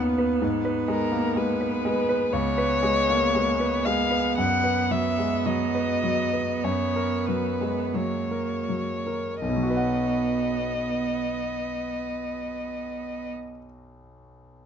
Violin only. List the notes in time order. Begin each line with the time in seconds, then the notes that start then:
0.89 A#4
1.37 B4
2.32 C#5
3.85 F5
4.37 F#5
4.91 E5
5.46 D#5
6.64 C#5
7.27 B4
7.95 C#5
9.42 D#5